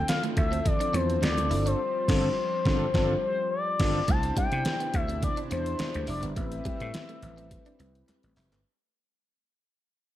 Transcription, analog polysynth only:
0.00 1.47 C4 medium
0.00 1.47 E4 medium
0.00 1.47 F4 medium
0.00 1.48 A4 medium
1.50 1.79 C4 medium
1.50 1.79 D4 medium
1.50 1.79 F4 medium
1.50 1.80 A4 medium
2.07 2.27 C4 loud
2.07 2.28 D4 medium
2.07 2.28 F4 loud
2.07 2.28 A4 loud
2.65 2.85 C4 loud
2.65 2.85 D4 loud
2.65 2.85 F4 loud
2.65 2.86 A4 loud
2.93 3.13 C4 loud
2.93 3.14 D4 loud
2.93 3.14 F4 loud
2.93 3.14 A4 loud
3.79 3.99 C4 loud
3.79 3.99 D4 loud
3.79 4.00 F4 loud
3.79 4.00 A4 loud
4.08 6.33 D4 medium
4.08 6.33 E4 medium
4.08 6.33 G4 medium
4.08 6.33 C5 medium
6.36 8.61 C4 medium
6.36 8.61 E4 medium
6.36 8.62 G4 medium
6.36 8.62 B4 medium

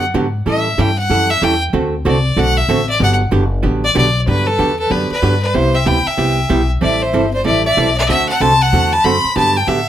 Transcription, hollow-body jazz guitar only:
0.14 0.26 D3 medium
0.14 0.26 F#3 medium
0.14 0.26 B3 medium
0.14 0.26 D4 medium
0.14 0.26 G4 medium
0.46 0.67 E3 medium
0.46 0.67 G3 medium
0.46 0.67 C#4 medium
0.46 0.68 E4 medium
0.46 0.68 A4 medium
0.78 0.89 E3 medium
0.78 0.90 G3 medium
0.78 0.90 C#4 medium
0.78 0.90 E4 medium
0.78 0.90 A4 medium
1.10 1.31 E3 medium
1.10 1.31 G3 medium
1.10 1.31 C#4 medium
1.10 1.31 E4 medium
1.10 1.31 A4 medium
1.42 1.53 E3 medium
1.42 1.53 G3 medium
1.42 1.53 C#4 medium
1.42 1.54 E4 medium
1.42 1.54 A4 medium
1.73 1.94 D3 medium
1.73 1.94 A3 medium
1.73 1.94 C4 medium
1.73 1.94 F#4 medium
1.73 1.95 A4 medium
2.05 2.16 D3 medium
2.05 2.17 A3 medium
2.05 2.17 C4 medium
2.05 2.17 F#4 medium
2.05 2.17 A4 medium
2.37 2.58 D3 medium
2.37 2.58 A3 medium
2.37 2.58 C4 medium
2.37 2.58 F#4 medium
2.37 2.58 A4 medium
2.69 2.80 D3 medium
2.69 2.80 A3 medium
2.69 2.80 C4 medium
2.69 2.80 F#4 medium
2.69 2.80 A4 medium
2.99 3.21 D3 medium
2.99 3.21 F#3 medium
2.99 3.21 B3 medium
2.99 3.21 D4 medium
2.99 3.22 G4 medium
3.31 3.43 D3 medium
3.31 3.43 F#3 medium
3.31 3.43 B3 medium
3.31 3.43 D4 medium
3.31 3.44 G4 medium
3.63 3.84 D3 medium
3.63 3.84 F#3 medium
3.63 3.84 B3 medium
3.63 3.84 D4 medium
3.63 3.85 G4 medium
3.95 4.07 D3 medium
3.95 4.07 F#3 medium
3.95 4.07 B3 medium
3.95 4.07 D4 medium
3.95 4.07 G4 medium
4.27 4.48 D3 medium
4.27 4.48 F#3 medium
4.27 4.49 B3 medium
4.27 4.49 D4 medium
4.27 4.49 G4 medium
4.59 4.70 D3 medium
4.59 4.70 F#3 medium
4.59 4.70 B3 medium
4.59 4.71 D4 medium
4.59 4.71 G4 medium
4.90 5.11 D3 medium
4.90 5.11 F#3 medium
4.90 5.12 B3 medium
4.90 5.12 D4 medium
4.90 5.12 G4 medium
5.22 5.34 D3 medium
5.22 5.34 F#3 medium
5.22 5.34 B3 medium
5.22 5.34 D4 medium
5.22 5.34 G4 medium
5.54 5.75 C3 medium
5.54 5.75 G3 medium
5.54 5.75 B3 medium
5.54 5.76 E4 medium
5.54 5.76 G4 medium
5.85 5.97 C3 medium
5.85 5.98 G3 medium
5.85 5.98 B3 medium
5.85 5.98 E4 medium
5.85 5.98 G4 medium
6.18 6.39 C3 medium
6.18 6.39 G3 medium
6.18 6.39 B3 medium
6.18 6.39 E4 medium
6.18 6.39 G4 medium
6.49 6.61 C3 medium
6.49 6.61 G3 medium
6.49 6.61 B3 medium
6.49 6.61 E4 medium
6.49 6.61 G4 medium
6.81 7.02 E3 medium
6.81 7.02 G3 medium
6.81 7.02 C4 medium
6.81 7.03 E4 medium
6.81 7.03 A4 medium
7.13 7.25 E3 medium
7.13 7.25 G3 medium
7.13 7.25 C4 medium
7.13 7.25 E4 medium
7.13 7.25 A4 medium
7.44 7.66 E3 medium
7.44 7.66 G3 medium
7.44 7.66 C4 medium
7.44 7.66 E4 medium
7.44 7.66 A4 medium
7.77 7.88 E3 medium
7.77 7.89 G3 medium
7.77 7.89 C4 medium
7.77 7.89 E4 medium
7.77 7.89 A4 medium
8.08 8.29 D3 medium
8.08 8.30 A3 medium
8.08 8.30 C4 medium
8.08 8.30 F#4 medium
8.08 8.30 A4 medium
8.41 8.52 D3 medium
8.41 8.52 A3 medium
8.41 8.52 C4 medium
8.41 8.52 F#4 medium
8.41 8.53 A4 medium
8.73 8.93 D3 medium
8.73 8.93 A3 medium
8.73 8.94 C4 medium
8.73 8.94 F#4 medium
8.73 8.94 A4 medium
9.04 9.15 D3 medium
9.04 9.16 A3 medium
9.04 9.16 C4 medium
9.04 9.16 F#4 medium
9.04 9.16 A4 medium
9.36 9.57 D3 medium
9.36 9.57 F#3 medium
9.36 9.57 B3 medium
9.36 9.57 D4 medium
9.36 9.57 G4 medium
9.67 9.79 D3 medium
9.67 9.79 F#3 medium
9.67 9.79 B3 medium
9.67 9.79 D4 medium
9.67 9.79 G4 medium

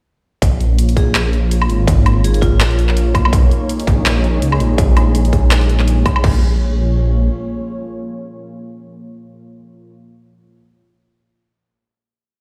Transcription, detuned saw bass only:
0.42 1.68 A#1 loud
1.70 2.62 G#1 medium
2.60 3.16 A#1 medium
3.15 3.50 B1 medium
3.87 4.41 A#1 medium
4.42 4.59 C#2 medium
4.60 4.77 A#1 medium
4.78 6.05 A#1 loud
6.24 7.29 A#1 loud

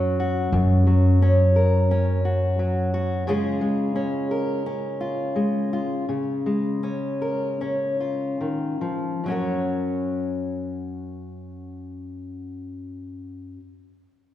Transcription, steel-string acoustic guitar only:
0.00 0.52 F#2 medium
0.00 0.86 F#3 medium
0.00 1.22 C#4 soft
0.00 0.18 F#4 soft
0.00 0.49 A#4 medium
0.20 0.49 F#4 medium
0.53 3.27 F#2 medium
0.87 2.58 F#3 soft
1.22 1.91 C#4 soft
1.56 3.23 A#4 soft
1.91 3.28 C#4 soft
2.25 2.93 F#4 soft
2.59 3.27 F#3 soft
2.94 3.23 F#4 medium
3.27 6.07 C#3 medium
3.27 3.61 G#3 soft
3.27 3.95 C#4 medium
3.27 4.99 F4 soft
3.27 4.31 G#4 medium
3.61 5.34 G#3 soft
3.96 4.66 C#4 soft
4.31 6.05 A#4 soft
4.66 6.83 C#4 soft
5.01 5.72 F4 soft
5.36 6.04 G#3 soft
5.73 6.05 F4 soft
6.09 8.40 C#3 medium
6.46 9.20 G#3 soft
6.83 7.60 C#4 soft
7.22 9.20 A#4 soft
7.61 9.20 C#4 soft
8.00 9.20 F4 soft
8.41 8.81 D#3 soft
8.81 9.24 F3 soft
9.24 13.55 F#2 soft
9.24 13.58 F#3 soft
9.28 13.60 C#4 soft
9.28 13.61 F#4 soft
9.28 13.63 A#4 soft

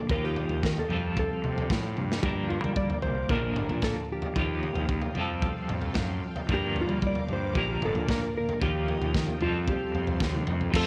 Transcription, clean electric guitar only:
0.09 0.88 D#3 medium
0.09 0.89 F3 medium
0.09 0.88 A#3 medium
0.09 0.91 F4 medium
0.09 0.89 G4 medium
0.89 2.23 F3 medium
0.89 2.22 G3 medium
0.89 2.22 C4 medium
0.89 2.25 F4 medium
0.89 2.23 A4 medium
2.22 3.28 G2 medium
2.22 3.28 D3 medium
2.22 3.30 F3 medium
2.22 3.29 A#3 medium
2.22 3.29 D4 medium
2.22 3.29 A#4 medium
3.29 4.34 A#2 medium
3.29 4.34 D3 medium
3.29 4.36 F3 medium
3.29 4.35 A#3 medium
3.29 4.36 D4 medium
3.29 4.36 A#4 loud
4.35 5.14 D#3 medium
4.35 5.15 F3 medium
4.35 5.15 A#3 medium
4.35 5.17 F4 medium
4.35 5.16 G4 medium
5.15 6.49 F3 medium
5.15 6.47 G3 medium
5.15 6.48 C4 medium
5.15 6.51 F4 medium
5.19 6.49 A4 loud
6.48 7.53 G2 medium
6.48 7.54 D3 medium
6.48 7.55 F3 medium
6.48 7.55 A#3 medium
6.48 7.55 D4 medium
6.52 7.55 A#4 medium
7.54 8.60 A#2 medium
7.54 8.59 D3 medium
7.54 8.60 F3 medium
7.54 8.61 A#3 medium
7.54 8.61 D4 medium
7.59 8.62 A#4 medium
8.60 9.39 D#3 medium
8.60 9.38 F3 medium
8.60 9.40 A#3 medium
8.60 9.40 F4 medium
8.60 9.40 G4 medium
9.39 10.69 F3 medium
9.39 10.71 G3 medium
9.39 10.72 C4 medium
9.39 10.72 F4 medium
9.43 10.72 A4 medium
10.70 10.87 F3 medium
10.70 10.87 A3 loud
10.70 10.87 C4 medium
10.70 10.87 F4 medium
10.70 10.87 A4 medium

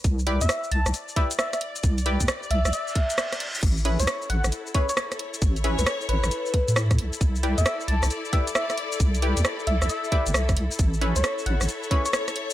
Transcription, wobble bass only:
0.04 0.39 C2 loud
0.41 0.48 E2 medium
0.72 0.85 C2 medium
0.86 0.93 C2 medium
1.84 2.18 C2 loud
2.21 2.27 E2 loud
2.51 2.64 C2 medium
2.65 2.72 C2 medium
3.63 3.97 A1 loud
4.00 4.07 C#2 medium
4.30 4.43 A1 medium
4.44 4.51 A1 medium
5.42 5.76 A1 loud
5.79 5.86 C#2 medium
6.09 6.22 A1 loud
6.24 6.30 A1 medium
6.68 7.00 A2 loud
6.99 7.12 C2 medium
7.21 7.55 C2 loud
7.58 7.65 E2 medium
7.88 8.01 C2 loud
8.03 8.10 C2 medium
9.00 9.34 C2 loud
9.37 9.44 E2 loud
9.67 9.80 C2 loud
9.82 9.89 C2 medium
10.27 10.33 G1 loud
10.34 10.50 C2 medium
10.49 10.56 G1 medium
10.57 10.70 C2 medium
10.79 11.14 A1 loud
11.16 11.23 C#2 medium
11.46 11.59 A1 loud
11.61 11.68 A1 medium

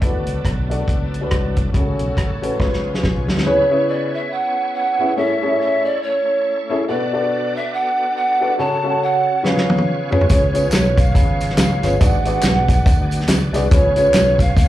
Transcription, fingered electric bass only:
0.02 0.23 D2 medium
0.27 0.42 C#2 medium
0.45 0.81 B1 medium
0.88 1.24 C#2 medium
1.32 1.68 C2 medium
1.74 1.96 C#2 medium
2.00 2.14 B1 medium
2.17 2.60 A1 medium
2.60 2.96 C#2 medium
3.04 3.29 B1 medium
3.29 3.43 D2 medium
10.30 10.66 C#2 loud
10.73 11.17 B1 medium
11.15 11.52 G#1 medium
11.59 11.80 C#2 loud
11.84 11.98 G1 medium
12.01 12.37 G#1 loud
12.44 12.80 B1 loud
12.86 13.22 D2 loud
13.29 13.50 C#2 medium
13.54 13.69 C2 loud
13.71 14.08 C#2 loud
14.14 14.50 B1 medium
14.57 14.68 C#2 loud

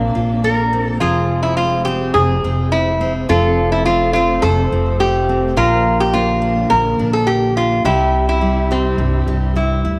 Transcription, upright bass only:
0.00 0.14 A#1 loud
0.15 0.97 A#1 medium
1.01 2.11 F1 loud
2.15 2.42 F1 loud
2.44 3.25 F1 medium
3.30 4.39 F1 loud
4.43 4.70 F1 loud
4.72 5.53 F1 medium
5.56 6.67 A#1 loud
6.71 6.98 A#1 loud
7.00 7.81 A#1 medium
7.85 8.95 C2 loud
8.98 9.26 C2 loud
9.27 9.81 C2 medium
9.84 9.97 D2 medium

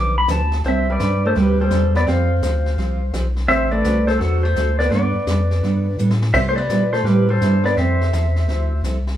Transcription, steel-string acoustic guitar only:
0.00 0.15 D3 medium
0.00 0.15 F3 medium
0.00 0.15 B3 medium
0.00 0.15 D4 medium
0.00 0.16 G4 medium
0.28 0.40 D3 medium
0.28 0.40 F3 medium
0.28 0.40 B3 medium
0.28 0.40 D4 medium
0.28 0.40 G4 medium
0.64 0.86 C3 medium
0.64 0.87 G3 medium
0.64 0.87 C4 medium
0.64 0.87 D4 medium
0.64 0.87 G4 medium
0.99 1.11 C3 medium
0.99 1.11 G3 medium
0.99 1.12 C4 medium
0.99 1.12 D4 medium
0.99 1.12 G4 medium
1.35 1.58 C3 medium
1.35 1.58 G3 medium
1.35 1.58 C4 medium
1.35 1.58 D4 medium
1.35 1.58 G4 medium
1.71 1.83 C3 medium
1.71 1.83 G3 medium
1.71 1.83 C4 medium
1.71 1.83 D4 medium
1.71 1.83 G4 medium
2.07 2.29 F3 medium
2.07 2.29 C4 medium
2.07 2.29 F4 medium
2.07 2.29 G4 medium
2.43 2.54 F3 medium
2.43 2.54 C4 medium
2.43 2.55 F4 medium
2.43 2.55 G4 medium
2.78 3.00 F3 medium
2.78 3.00 C4 medium
2.78 3.01 F4 medium
2.78 3.01 G4 medium
3.14 3.25 F3 medium
3.14 3.26 C4 medium
3.14 3.26 F4 medium
3.14 3.26 G4 medium
3.50 3.72 D3 medium
3.50 3.72 A3 medium
3.50 3.73 C4 medium
3.50 3.73 F#4 medium
3.50 3.73 A4 medium
3.84 3.97 D3 medium
3.84 3.97 A3 medium
3.84 3.97 C4 medium
3.84 3.97 F#4 medium
3.84 3.97 A4 medium
4.21 4.43 D3 medium
4.21 4.43 A3 medium
4.21 4.44 C4 medium
4.21 4.43 F#4 medium
4.21 4.44 A4 medium
4.55 4.68 D3 medium
4.55 4.68 A3 medium
4.55 4.68 C4 medium
4.55 4.68 F#4 medium
4.55 4.68 A4 medium
4.92 5.14 G3 medium
4.92 5.14 B3 medium
4.92 5.15 D4 medium
4.92 5.15 A4 medium
5.28 5.40 G3 medium
5.28 5.40 B3 medium
5.28 5.40 D4 medium
5.28 5.40 A4 medium
5.64 5.86 G3 medium
5.64 5.86 B3 medium
5.64 5.86 D4 medium
5.64 5.87 A4 medium
5.99 6.11 G3 medium
5.99 6.11 B3 medium
5.99 6.11 D4 medium
5.99 6.11 A4 medium
6.35 6.57 C3 medium
6.35 6.57 G3 medium
6.35 6.57 B3 medium
6.35 6.57 E4 medium
6.35 6.58 G4 medium
6.71 6.82 C3 medium
6.71 6.82 G3 medium
6.71 6.83 B3 medium
6.71 6.83 E4 medium
6.71 6.83 G4 medium
7.06 7.29 C3 medium
7.06 7.29 G3 medium
7.06 7.29 B3 medium
7.06 7.29 E4 medium
7.06 7.29 G4 medium
7.42 7.54 C3 medium
7.42 7.54 G3 medium
7.42 7.54 B3 medium
7.42 7.54 E4 medium
7.42 7.54 G4 medium
7.76 7.99 F3 medium
7.76 7.99 C4 medium
7.76 8.00 E4 medium
7.76 8.00 A4 medium
8.13 8.25 F3 medium
8.13 8.25 C4 medium
8.13 8.25 E4 medium
8.13 8.25 A4 medium
8.49 8.71 F3 medium
8.49 8.71 C4 medium
8.49 8.72 E4 medium
8.49 8.72 A4 medium
8.85 8.96 F3 medium
8.85 8.97 C4 medium
8.85 8.97 E4 medium
8.85 8.97 A4 medium

